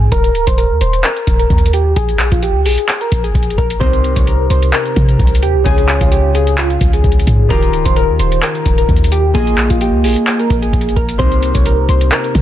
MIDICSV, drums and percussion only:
0, 0, Header, 1, 2, 480
1, 0, Start_track
1, 0, Tempo, 461538
1, 123, Time_signature, 4, 2, 24, 8
1, 12916, End_track
2, 0, Start_track
2, 0, Title_t, "Drums"
2, 123, Note_on_c, 9, 36, 118
2, 123, Note_on_c, 9, 42, 77
2, 227, Note_off_c, 9, 36, 0
2, 227, Note_off_c, 9, 42, 0
2, 250, Note_on_c, 9, 42, 59
2, 354, Note_off_c, 9, 42, 0
2, 363, Note_on_c, 9, 42, 64
2, 467, Note_off_c, 9, 42, 0
2, 490, Note_on_c, 9, 36, 95
2, 490, Note_on_c, 9, 42, 90
2, 594, Note_off_c, 9, 36, 0
2, 594, Note_off_c, 9, 42, 0
2, 603, Note_on_c, 9, 42, 73
2, 707, Note_off_c, 9, 42, 0
2, 842, Note_on_c, 9, 42, 74
2, 946, Note_off_c, 9, 42, 0
2, 969, Note_on_c, 9, 42, 60
2, 1073, Note_off_c, 9, 42, 0
2, 1082, Note_on_c, 9, 39, 121
2, 1083, Note_on_c, 9, 42, 80
2, 1186, Note_off_c, 9, 39, 0
2, 1187, Note_off_c, 9, 42, 0
2, 1210, Note_on_c, 9, 42, 47
2, 1314, Note_off_c, 9, 42, 0
2, 1323, Note_on_c, 9, 36, 94
2, 1323, Note_on_c, 9, 42, 84
2, 1427, Note_off_c, 9, 36, 0
2, 1427, Note_off_c, 9, 42, 0
2, 1450, Note_on_c, 9, 42, 60
2, 1554, Note_off_c, 9, 42, 0
2, 1562, Note_on_c, 9, 36, 102
2, 1563, Note_on_c, 9, 42, 43
2, 1643, Note_off_c, 9, 42, 0
2, 1643, Note_on_c, 9, 42, 55
2, 1666, Note_off_c, 9, 36, 0
2, 1723, Note_off_c, 9, 42, 0
2, 1723, Note_on_c, 9, 42, 69
2, 1802, Note_off_c, 9, 42, 0
2, 1802, Note_on_c, 9, 42, 74
2, 1906, Note_off_c, 9, 42, 0
2, 2042, Note_on_c, 9, 42, 76
2, 2043, Note_on_c, 9, 36, 122
2, 2146, Note_off_c, 9, 42, 0
2, 2147, Note_off_c, 9, 36, 0
2, 2170, Note_on_c, 9, 42, 60
2, 2274, Note_off_c, 9, 42, 0
2, 2282, Note_on_c, 9, 39, 91
2, 2282, Note_on_c, 9, 42, 63
2, 2386, Note_off_c, 9, 39, 0
2, 2386, Note_off_c, 9, 42, 0
2, 2410, Note_on_c, 9, 42, 90
2, 2411, Note_on_c, 9, 36, 97
2, 2514, Note_off_c, 9, 42, 0
2, 2515, Note_off_c, 9, 36, 0
2, 2523, Note_on_c, 9, 42, 73
2, 2627, Note_off_c, 9, 42, 0
2, 2762, Note_on_c, 9, 46, 76
2, 2866, Note_off_c, 9, 46, 0
2, 2890, Note_on_c, 9, 42, 61
2, 2994, Note_off_c, 9, 42, 0
2, 3002, Note_on_c, 9, 39, 115
2, 3002, Note_on_c, 9, 42, 81
2, 3106, Note_off_c, 9, 39, 0
2, 3106, Note_off_c, 9, 42, 0
2, 3130, Note_on_c, 9, 42, 49
2, 3234, Note_off_c, 9, 42, 0
2, 3243, Note_on_c, 9, 36, 100
2, 3243, Note_on_c, 9, 42, 83
2, 3347, Note_off_c, 9, 36, 0
2, 3347, Note_off_c, 9, 42, 0
2, 3370, Note_on_c, 9, 42, 59
2, 3474, Note_off_c, 9, 42, 0
2, 3482, Note_on_c, 9, 36, 103
2, 3483, Note_on_c, 9, 42, 59
2, 3564, Note_off_c, 9, 42, 0
2, 3564, Note_on_c, 9, 42, 58
2, 3586, Note_off_c, 9, 36, 0
2, 3643, Note_off_c, 9, 42, 0
2, 3643, Note_on_c, 9, 42, 56
2, 3724, Note_off_c, 9, 42, 0
2, 3724, Note_on_c, 9, 36, 91
2, 3724, Note_on_c, 9, 42, 45
2, 3828, Note_off_c, 9, 36, 0
2, 3828, Note_off_c, 9, 42, 0
2, 3851, Note_on_c, 9, 42, 80
2, 3955, Note_off_c, 9, 42, 0
2, 3963, Note_on_c, 9, 36, 122
2, 3964, Note_on_c, 9, 42, 77
2, 4067, Note_off_c, 9, 36, 0
2, 4068, Note_off_c, 9, 42, 0
2, 4090, Note_on_c, 9, 42, 61
2, 4194, Note_off_c, 9, 42, 0
2, 4203, Note_on_c, 9, 42, 62
2, 4307, Note_off_c, 9, 42, 0
2, 4330, Note_on_c, 9, 42, 89
2, 4331, Note_on_c, 9, 36, 96
2, 4434, Note_off_c, 9, 42, 0
2, 4435, Note_off_c, 9, 36, 0
2, 4443, Note_on_c, 9, 42, 74
2, 4547, Note_off_c, 9, 42, 0
2, 4682, Note_on_c, 9, 42, 75
2, 4786, Note_off_c, 9, 42, 0
2, 4809, Note_on_c, 9, 42, 60
2, 4913, Note_off_c, 9, 42, 0
2, 4921, Note_on_c, 9, 39, 121
2, 4922, Note_on_c, 9, 42, 79
2, 5025, Note_off_c, 9, 39, 0
2, 5026, Note_off_c, 9, 42, 0
2, 5049, Note_on_c, 9, 42, 48
2, 5153, Note_off_c, 9, 42, 0
2, 5162, Note_on_c, 9, 42, 81
2, 5163, Note_on_c, 9, 36, 97
2, 5266, Note_off_c, 9, 42, 0
2, 5267, Note_off_c, 9, 36, 0
2, 5289, Note_on_c, 9, 42, 60
2, 5393, Note_off_c, 9, 42, 0
2, 5402, Note_on_c, 9, 36, 102
2, 5402, Note_on_c, 9, 42, 42
2, 5482, Note_off_c, 9, 42, 0
2, 5482, Note_on_c, 9, 42, 58
2, 5506, Note_off_c, 9, 36, 0
2, 5563, Note_off_c, 9, 42, 0
2, 5563, Note_on_c, 9, 42, 70
2, 5642, Note_off_c, 9, 42, 0
2, 5642, Note_on_c, 9, 42, 74
2, 5746, Note_off_c, 9, 42, 0
2, 5883, Note_on_c, 9, 36, 122
2, 5883, Note_on_c, 9, 42, 76
2, 5987, Note_off_c, 9, 36, 0
2, 5987, Note_off_c, 9, 42, 0
2, 6010, Note_on_c, 9, 42, 59
2, 6114, Note_off_c, 9, 42, 0
2, 6122, Note_on_c, 9, 39, 93
2, 6122, Note_on_c, 9, 42, 64
2, 6226, Note_off_c, 9, 39, 0
2, 6226, Note_off_c, 9, 42, 0
2, 6250, Note_on_c, 9, 36, 97
2, 6250, Note_on_c, 9, 42, 93
2, 6354, Note_off_c, 9, 36, 0
2, 6354, Note_off_c, 9, 42, 0
2, 6362, Note_on_c, 9, 42, 73
2, 6466, Note_off_c, 9, 42, 0
2, 6602, Note_on_c, 9, 42, 76
2, 6706, Note_off_c, 9, 42, 0
2, 6729, Note_on_c, 9, 42, 61
2, 6833, Note_off_c, 9, 42, 0
2, 6841, Note_on_c, 9, 39, 119
2, 6842, Note_on_c, 9, 42, 83
2, 6945, Note_off_c, 9, 39, 0
2, 6946, Note_off_c, 9, 42, 0
2, 6969, Note_on_c, 9, 42, 47
2, 7073, Note_off_c, 9, 42, 0
2, 7082, Note_on_c, 9, 42, 84
2, 7083, Note_on_c, 9, 36, 96
2, 7186, Note_off_c, 9, 42, 0
2, 7187, Note_off_c, 9, 36, 0
2, 7209, Note_on_c, 9, 42, 60
2, 7313, Note_off_c, 9, 42, 0
2, 7322, Note_on_c, 9, 36, 104
2, 7322, Note_on_c, 9, 42, 43
2, 7402, Note_off_c, 9, 42, 0
2, 7402, Note_on_c, 9, 42, 58
2, 7426, Note_off_c, 9, 36, 0
2, 7482, Note_off_c, 9, 42, 0
2, 7482, Note_on_c, 9, 42, 67
2, 7562, Note_off_c, 9, 42, 0
2, 7562, Note_on_c, 9, 42, 75
2, 7563, Note_on_c, 9, 36, 87
2, 7666, Note_off_c, 9, 42, 0
2, 7667, Note_off_c, 9, 36, 0
2, 7803, Note_on_c, 9, 36, 119
2, 7803, Note_on_c, 9, 42, 79
2, 7907, Note_off_c, 9, 36, 0
2, 7907, Note_off_c, 9, 42, 0
2, 7930, Note_on_c, 9, 42, 59
2, 8034, Note_off_c, 9, 42, 0
2, 8043, Note_on_c, 9, 42, 65
2, 8147, Note_off_c, 9, 42, 0
2, 8169, Note_on_c, 9, 42, 90
2, 8170, Note_on_c, 9, 36, 97
2, 8273, Note_off_c, 9, 42, 0
2, 8274, Note_off_c, 9, 36, 0
2, 8282, Note_on_c, 9, 42, 74
2, 8386, Note_off_c, 9, 42, 0
2, 8522, Note_on_c, 9, 42, 77
2, 8626, Note_off_c, 9, 42, 0
2, 8650, Note_on_c, 9, 42, 60
2, 8754, Note_off_c, 9, 42, 0
2, 8762, Note_on_c, 9, 39, 121
2, 8763, Note_on_c, 9, 42, 82
2, 8866, Note_off_c, 9, 39, 0
2, 8867, Note_off_c, 9, 42, 0
2, 8890, Note_on_c, 9, 42, 48
2, 8994, Note_off_c, 9, 42, 0
2, 9003, Note_on_c, 9, 36, 97
2, 9003, Note_on_c, 9, 42, 84
2, 9107, Note_off_c, 9, 36, 0
2, 9107, Note_off_c, 9, 42, 0
2, 9130, Note_on_c, 9, 42, 60
2, 9234, Note_off_c, 9, 42, 0
2, 9242, Note_on_c, 9, 36, 104
2, 9243, Note_on_c, 9, 42, 43
2, 9323, Note_off_c, 9, 42, 0
2, 9323, Note_on_c, 9, 42, 56
2, 9346, Note_off_c, 9, 36, 0
2, 9403, Note_off_c, 9, 42, 0
2, 9403, Note_on_c, 9, 42, 68
2, 9483, Note_off_c, 9, 42, 0
2, 9483, Note_on_c, 9, 42, 77
2, 9587, Note_off_c, 9, 42, 0
2, 9722, Note_on_c, 9, 42, 79
2, 9723, Note_on_c, 9, 36, 120
2, 9826, Note_off_c, 9, 42, 0
2, 9827, Note_off_c, 9, 36, 0
2, 9850, Note_on_c, 9, 42, 62
2, 9954, Note_off_c, 9, 42, 0
2, 9961, Note_on_c, 9, 39, 89
2, 9962, Note_on_c, 9, 42, 64
2, 10065, Note_off_c, 9, 39, 0
2, 10066, Note_off_c, 9, 42, 0
2, 10089, Note_on_c, 9, 42, 92
2, 10090, Note_on_c, 9, 36, 97
2, 10193, Note_off_c, 9, 42, 0
2, 10194, Note_off_c, 9, 36, 0
2, 10202, Note_on_c, 9, 42, 74
2, 10306, Note_off_c, 9, 42, 0
2, 10442, Note_on_c, 9, 46, 74
2, 10546, Note_off_c, 9, 46, 0
2, 10569, Note_on_c, 9, 42, 61
2, 10673, Note_off_c, 9, 42, 0
2, 10682, Note_on_c, 9, 39, 119
2, 10682, Note_on_c, 9, 42, 80
2, 10786, Note_off_c, 9, 39, 0
2, 10786, Note_off_c, 9, 42, 0
2, 10810, Note_on_c, 9, 42, 47
2, 10914, Note_off_c, 9, 42, 0
2, 10923, Note_on_c, 9, 36, 96
2, 10923, Note_on_c, 9, 42, 82
2, 11027, Note_off_c, 9, 36, 0
2, 11027, Note_off_c, 9, 42, 0
2, 11050, Note_on_c, 9, 42, 60
2, 11154, Note_off_c, 9, 42, 0
2, 11162, Note_on_c, 9, 36, 101
2, 11162, Note_on_c, 9, 42, 57
2, 11242, Note_off_c, 9, 42, 0
2, 11242, Note_on_c, 9, 42, 58
2, 11266, Note_off_c, 9, 36, 0
2, 11322, Note_off_c, 9, 42, 0
2, 11322, Note_on_c, 9, 42, 56
2, 11403, Note_off_c, 9, 42, 0
2, 11403, Note_on_c, 9, 36, 90
2, 11403, Note_on_c, 9, 42, 47
2, 11507, Note_off_c, 9, 36, 0
2, 11507, Note_off_c, 9, 42, 0
2, 11530, Note_on_c, 9, 42, 77
2, 11634, Note_off_c, 9, 42, 0
2, 11643, Note_on_c, 9, 36, 119
2, 11643, Note_on_c, 9, 42, 76
2, 11747, Note_off_c, 9, 36, 0
2, 11747, Note_off_c, 9, 42, 0
2, 11770, Note_on_c, 9, 42, 58
2, 11874, Note_off_c, 9, 42, 0
2, 11883, Note_on_c, 9, 42, 66
2, 11987, Note_off_c, 9, 42, 0
2, 12010, Note_on_c, 9, 42, 92
2, 12011, Note_on_c, 9, 36, 95
2, 12114, Note_off_c, 9, 42, 0
2, 12115, Note_off_c, 9, 36, 0
2, 12123, Note_on_c, 9, 42, 75
2, 12227, Note_off_c, 9, 42, 0
2, 12363, Note_on_c, 9, 42, 76
2, 12467, Note_off_c, 9, 42, 0
2, 12490, Note_on_c, 9, 42, 61
2, 12594, Note_off_c, 9, 42, 0
2, 12603, Note_on_c, 9, 39, 117
2, 12603, Note_on_c, 9, 42, 82
2, 12707, Note_off_c, 9, 39, 0
2, 12707, Note_off_c, 9, 42, 0
2, 12731, Note_on_c, 9, 42, 47
2, 12835, Note_off_c, 9, 42, 0
2, 12843, Note_on_c, 9, 42, 86
2, 12844, Note_on_c, 9, 36, 96
2, 12916, Note_off_c, 9, 36, 0
2, 12916, Note_off_c, 9, 42, 0
2, 12916, End_track
0, 0, End_of_file